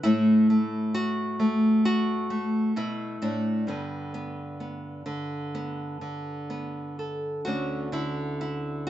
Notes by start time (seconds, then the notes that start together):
0.03 A2 A3 E4
0.50 A3
0.94 F#4
1.39 A3
1.85 F#4
2.30 A3
2.76 B2 E4
3.22 A2 D4
3.67 G2 D3 B3
4.14 B3
4.60 B3
5.06 D3
5.55 B3
6.01 D3
6.50 B3
6.99 A4
7.45 D2 D3 C#4 D4 F#4
7.92 D3 E4
8.41 E4